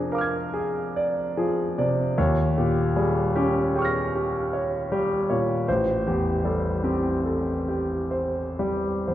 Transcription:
0, 0, Header, 1, 2, 480
1, 0, Start_track
1, 0, Tempo, 841515
1, 547, Tempo, 805369
1, 1272, Time_signature, 9, 3, 24, 8
1, 1507, Tempo, 774194
1, 3907, Tempo, 837989
1, 4867, Tempo, 964630
1, 5378, End_track
2, 0, Start_track
2, 0, Title_t, "Grand piano"
2, 0, Program_c, 0, 0
2, 0, Control_c, 0, 64, 127
2, 0, Note_on_c, 0, 41, 49
2, 0, Note_on_c, 0, 48, 42
2, 0, Note_on_c, 0, 53, 45
2, 0, Note_on_c, 0, 62, 46
2, 0, Note_on_c, 0, 68, 49
2, 0, Note_on_c, 0, 70, 40
2, 0, Note_on_c, 0, 74, 43
2, 67, Note_on_c, 0, 77, 34
2, 68, Note_off_c, 0, 70, 0
2, 68, Note_on_c, 0, 70, 38
2, 85, Note_on_c, 0, 86, 32
2, 104, Note_on_c, 0, 89, 33
2, 120, Note_on_c, 0, 92, 34
2, 212, Note_off_c, 0, 62, 0
2, 212, Note_off_c, 0, 68, 0
2, 306, Note_on_c, 0, 68, 47
2, 308, Note_off_c, 0, 70, 0
2, 550, Note_off_c, 0, 74, 0
2, 550, Note_on_c, 0, 74, 48
2, 695, Note_off_c, 0, 68, 0
2, 794, Note_off_c, 0, 53, 0
2, 794, Note_on_c, 0, 53, 50
2, 794, Note_on_c, 0, 68, 46
2, 939, Note_off_c, 0, 74, 0
2, 1038, Note_off_c, 0, 48, 0
2, 1038, Note_on_c, 0, 48, 43
2, 1039, Note_on_c, 0, 74, 45
2, 1177, Note_off_c, 0, 53, 0
2, 1177, Note_off_c, 0, 68, 0
2, 1248, Note_off_c, 0, 41, 0
2, 1248, Note_off_c, 0, 77, 0
2, 1257, Note_off_c, 0, 86, 0
2, 1267, Note_off_c, 0, 89, 0
2, 1274, Note_off_c, 0, 48, 0
2, 1274, Note_on_c, 0, 39, 55
2, 1274, Note_on_c, 0, 73, 51
2, 1275, Note_off_c, 0, 74, 0
2, 1276, Note_off_c, 0, 92, 0
2, 1281, Control_c, 0, 64, 0
2, 1359, Control_c, 0, 64, 127
2, 1512, Note_on_c, 0, 46, 43
2, 1512, Note_on_c, 0, 67, 44
2, 1652, Note_off_c, 0, 73, 0
2, 1749, Note_on_c, 0, 68, 42
2, 1752, Note_on_c, 0, 55, 47
2, 1894, Note_off_c, 0, 46, 0
2, 1894, Note_off_c, 0, 67, 0
2, 1989, Note_off_c, 0, 68, 0
2, 1994, Note_on_c, 0, 67, 50
2, 1997, Note_on_c, 0, 61, 50
2, 2137, Note_off_c, 0, 55, 0
2, 2242, Note_on_c, 0, 68, 43
2, 2243, Note_on_c, 0, 79, 33
2, 2261, Note_on_c, 0, 85, 38
2, 2281, Note_on_c, 0, 89, 37
2, 2299, Note_on_c, 0, 94, 37
2, 2382, Note_off_c, 0, 67, 0
2, 2384, Note_off_c, 0, 61, 0
2, 2480, Note_off_c, 0, 68, 0
2, 2488, Note_on_c, 0, 67, 45
2, 2724, Note_on_c, 0, 73, 40
2, 2863, Note_off_c, 0, 67, 0
2, 2962, Note_on_c, 0, 55, 43
2, 2963, Note_on_c, 0, 67, 52
2, 3104, Note_off_c, 0, 73, 0
2, 3198, Note_on_c, 0, 73, 45
2, 3201, Note_on_c, 0, 46, 42
2, 3343, Note_off_c, 0, 55, 0
2, 3343, Note_off_c, 0, 67, 0
2, 3409, Note_off_c, 0, 39, 0
2, 3413, Note_off_c, 0, 79, 0
2, 3422, Note_off_c, 0, 85, 0
2, 3432, Note_off_c, 0, 89, 0
2, 3434, Note_off_c, 0, 73, 0
2, 3436, Note_off_c, 0, 46, 0
2, 3438, Note_on_c, 0, 72, 46
2, 3441, Note_off_c, 0, 94, 0
2, 3442, Control_c, 0, 64, 0
2, 3442, Note_on_c, 0, 33, 55
2, 3520, Control_c, 0, 64, 127
2, 3677, Note_on_c, 0, 40, 41
2, 3679, Note_on_c, 0, 67, 41
2, 3812, Note_off_c, 0, 72, 0
2, 3910, Note_on_c, 0, 55, 40
2, 3911, Note_on_c, 0, 69, 34
2, 4045, Note_off_c, 0, 40, 0
2, 4046, Note_off_c, 0, 67, 0
2, 4135, Note_on_c, 0, 60, 44
2, 4135, Note_on_c, 0, 67, 46
2, 4137, Note_off_c, 0, 69, 0
2, 4278, Note_off_c, 0, 55, 0
2, 4375, Note_on_c, 0, 69, 32
2, 4519, Note_off_c, 0, 60, 0
2, 4519, Note_off_c, 0, 67, 0
2, 4617, Note_off_c, 0, 69, 0
2, 4620, Note_on_c, 0, 67, 38
2, 4863, Note_on_c, 0, 72, 32
2, 5003, Note_off_c, 0, 67, 0
2, 5103, Note_on_c, 0, 55, 39
2, 5103, Note_on_c, 0, 67, 36
2, 5243, Note_off_c, 0, 72, 0
2, 5344, Note_on_c, 0, 40, 32
2, 5344, Note_on_c, 0, 72, 34
2, 5378, Note_off_c, 0, 33, 0
2, 5378, Note_off_c, 0, 40, 0
2, 5378, Note_off_c, 0, 55, 0
2, 5378, Note_off_c, 0, 67, 0
2, 5378, Note_off_c, 0, 72, 0
2, 5378, End_track
0, 0, End_of_file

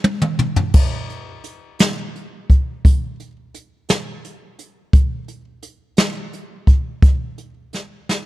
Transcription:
0, 0, Header, 1, 2, 480
1, 0, Start_track
1, 0, Tempo, 699301
1, 513, Time_signature, 6, 3, 24, 8
1, 5669, End_track
2, 0, Start_track
2, 0, Title_t, "Drums"
2, 28, Note_on_c, 9, 48, 69
2, 97, Note_off_c, 9, 48, 0
2, 148, Note_on_c, 9, 47, 71
2, 217, Note_off_c, 9, 47, 0
2, 267, Note_on_c, 9, 45, 77
2, 335, Note_off_c, 9, 45, 0
2, 386, Note_on_c, 9, 43, 76
2, 454, Note_off_c, 9, 43, 0
2, 506, Note_on_c, 9, 49, 78
2, 509, Note_on_c, 9, 36, 101
2, 575, Note_off_c, 9, 49, 0
2, 578, Note_off_c, 9, 36, 0
2, 752, Note_on_c, 9, 42, 45
2, 821, Note_off_c, 9, 42, 0
2, 988, Note_on_c, 9, 42, 68
2, 1056, Note_off_c, 9, 42, 0
2, 1230, Note_on_c, 9, 42, 92
2, 1238, Note_on_c, 9, 38, 105
2, 1298, Note_off_c, 9, 42, 0
2, 1306, Note_off_c, 9, 38, 0
2, 1479, Note_on_c, 9, 42, 45
2, 1548, Note_off_c, 9, 42, 0
2, 1714, Note_on_c, 9, 36, 71
2, 1716, Note_on_c, 9, 42, 58
2, 1782, Note_off_c, 9, 36, 0
2, 1784, Note_off_c, 9, 42, 0
2, 1955, Note_on_c, 9, 36, 98
2, 1957, Note_on_c, 9, 42, 83
2, 2024, Note_off_c, 9, 36, 0
2, 2026, Note_off_c, 9, 42, 0
2, 2195, Note_on_c, 9, 42, 46
2, 2264, Note_off_c, 9, 42, 0
2, 2433, Note_on_c, 9, 42, 65
2, 2501, Note_off_c, 9, 42, 0
2, 2668, Note_on_c, 9, 42, 103
2, 2676, Note_on_c, 9, 38, 108
2, 2737, Note_off_c, 9, 42, 0
2, 2745, Note_off_c, 9, 38, 0
2, 2914, Note_on_c, 9, 42, 52
2, 2982, Note_off_c, 9, 42, 0
2, 3149, Note_on_c, 9, 42, 61
2, 3217, Note_off_c, 9, 42, 0
2, 3386, Note_on_c, 9, 36, 102
2, 3387, Note_on_c, 9, 42, 85
2, 3455, Note_off_c, 9, 36, 0
2, 3456, Note_off_c, 9, 42, 0
2, 3625, Note_on_c, 9, 42, 54
2, 3694, Note_off_c, 9, 42, 0
2, 3862, Note_on_c, 9, 42, 69
2, 3930, Note_off_c, 9, 42, 0
2, 4097, Note_on_c, 9, 42, 98
2, 4105, Note_on_c, 9, 38, 103
2, 4166, Note_off_c, 9, 42, 0
2, 4174, Note_off_c, 9, 38, 0
2, 4345, Note_on_c, 9, 42, 50
2, 4414, Note_off_c, 9, 42, 0
2, 4580, Note_on_c, 9, 36, 71
2, 4582, Note_on_c, 9, 42, 58
2, 4649, Note_off_c, 9, 36, 0
2, 4651, Note_off_c, 9, 42, 0
2, 4822, Note_on_c, 9, 36, 102
2, 4822, Note_on_c, 9, 42, 83
2, 4890, Note_off_c, 9, 36, 0
2, 4891, Note_off_c, 9, 42, 0
2, 5065, Note_on_c, 9, 42, 45
2, 5134, Note_off_c, 9, 42, 0
2, 5306, Note_on_c, 9, 42, 58
2, 5315, Note_on_c, 9, 38, 32
2, 5374, Note_off_c, 9, 42, 0
2, 5383, Note_off_c, 9, 38, 0
2, 5555, Note_on_c, 9, 38, 55
2, 5623, Note_off_c, 9, 38, 0
2, 5669, End_track
0, 0, End_of_file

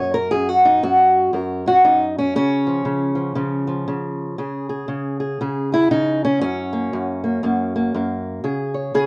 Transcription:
0, 0, Header, 1, 2, 480
1, 0, Start_track
1, 0, Key_signature, 6, "major"
1, 0, Tempo, 507614
1, 301, Time_signature, 4, 2, 24, 8
1, 8572, End_track
2, 0, Start_track
2, 0, Title_t, "Steel-string acoustic guitar"
2, 0, Program_c, 0, 25
2, 0, Note_on_c, 0, 42, 71
2, 0, Note_on_c, 0, 58, 49
2, 0, Note_on_c, 0, 73, 98
2, 131, Note_on_c, 0, 70, 95
2, 139, Note_off_c, 0, 73, 0
2, 281, Note_off_c, 0, 58, 0
2, 291, Note_off_c, 0, 42, 0
2, 291, Note_on_c, 0, 68, 98
2, 296, Note_off_c, 0, 70, 0
2, 302, Note_on_c, 0, 42, 69
2, 459, Note_off_c, 0, 68, 0
2, 459, Note_on_c, 0, 66, 95
2, 614, Note_on_c, 0, 63, 89
2, 620, Note_off_c, 0, 66, 0
2, 771, Note_off_c, 0, 42, 0
2, 777, Note_off_c, 0, 63, 0
2, 782, Note_on_c, 0, 42, 78
2, 786, Note_on_c, 0, 66, 103
2, 1245, Note_off_c, 0, 42, 0
2, 1257, Note_on_c, 0, 42, 81
2, 1263, Note_off_c, 0, 66, 0
2, 1268, Note_on_c, 0, 70, 53
2, 1570, Note_on_c, 0, 61, 48
2, 1579, Note_off_c, 0, 70, 0
2, 1583, Note_on_c, 0, 66, 105
2, 1739, Note_off_c, 0, 42, 0
2, 1739, Note_off_c, 0, 61, 0
2, 1742, Note_off_c, 0, 66, 0
2, 1743, Note_on_c, 0, 63, 97
2, 1748, Note_on_c, 0, 42, 77
2, 2061, Note_off_c, 0, 63, 0
2, 2065, Note_on_c, 0, 61, 96
2, 2219, Note_off_c, 0, 61, 0
2, 2224, Note_off_c, 0, 42, 0
2, 2227, Note_on_c, 0, 49, 71
2, 2232, Note_on_c, 0, 61, 118
2, 2522, Note_on_c, 0, 53, 49
2, 2691, Note_off_c, 0, 49, 0
2, 2695, Note_on_c, 0, 49, 78
2, 2977, Note_off_c, 0, 53, 0
2, 2981, Note_on_c, 0, 53, 46
2, 3167, Note_off_c, 0, 49, 0
2, 3171, Note_on_c, 0, 49, 83
2, 3173, Note_off_c, 0, 53, 0
2, 3177, Note_on_c, 0, 53, 52
2, 3461, Note_off_c, 0, 53, 0
2, 3473, Note_on_c, 0, 53, 53
2, 3656, Note_off_c, 0, 49, 0
2, 3665, Note_off_c, 0, 61, 0
2, 3665, Note_on_c, 0, 49, 75
2, 4119, Note_off_c, 0, 53, 0
2, 4120, Note_off_c, 0, 49, 0
2, 4143, Note_on_c, 0, 49, 72
2, 4148, Note_on_c, 0, 68, 49
2, 4426, Note_off_c, 0, 68, 0
2, 4438, Note_on_c, 0, 68, 55
2, 4602, Note_off_c, 0, 49, 0
2, 4613, Note_on_c, 0, 49, 82
2, 4906, Note_off_c, 0, 68, 0
2, 4917, Note_on_c, 0, 68, 50
2, 5097, Note_off_c, 0, 49, 0
2, 5104, Note_off_c, 0, 68, 0
2, 5113, Note_on_c, 0, 49, 84
2, 5119, Note_on_c, 0, 68, 58
2, 5399, Note_off_c, 0, 68, 0
2, 5411, Note_on_c, 0, 68, 51
2, 5423, Note_on_c, 0, 64, 112
2, 5576, Note_off_c, 0, 49, 0
2, 5582, Note_off_c, 0, 64, 0
2, 5586, Note_on_c, 0, 49, 77
2, 5587, Note_on_c, 0, 63, 94
2, 5902, Note_off_c, 0, 63, 0
2, 5907, Note_on_c, 0, 61, 99
2, 6041, Note_off_c, 0, 49, 0
2, 6047, Note_off_c, 0, 68, 0
2, 6055, Note_off_c, 0, 61, 0
2, 6066, Note_on_c, 0, 61, 106
2, 6071, Note_on_c, 0, 42, 77
2, 6361, Note_on_c, 0, 58, 52
2, 6543, Note_off_c, 0, 42, 0
2, 6554, Note_on_c, 0, 42, 86
2, 6832, Note_off_c, 0, 58, 0
2, 6843, Note_on_c, 0, 58, 50
2, 7014, Note_off_c, 0, 42, 0
2, 7023, Note_off_c, 0, 58, 0
2, 7025, Note_on_c, 0, 42, 84
2, 7034, Note_on_c, 0, 58, 57
2, 7317, Note_off_c, 0, 58, 0
2, 7334, Note_on_c, 0, 58, 55
2, 7502, Note_off_c, 0, 42, 0
2, 7502, Note_off_c, 0, 61, 0
2, 7511, Note_off_c, 0, 58, 0
2, 7512, Note_on_c, 0, 42, 79
2, 7522, Note_on_c, 0, 58, 49
2, 7968, Note_off_c, 0, 58, 0
2, 7975, Note_off_c, 0, 42, 0
2, 7979, Note_on_c, 0, 49, 73
2, 7983, Note_on_c, 0, 68, 53
2, 8268, Note_on_c, 0, 73, 52
2, 8447, Note_off_c, 0, 49, 0
2, 8451, Note_off_c, 0, 68, 0
2, 8458, Note_on_c, 0, 49, 80
2, 8463, Note_on_c, 0, 68, 105
2, 8572, Note_off_c, 0, 49, 0
2, 8572, Note_off_c, 0, 68, 0
2, 8572, Note_off_c, 0, 73, 0
2, 8572, End_track
0, 0, End_of_file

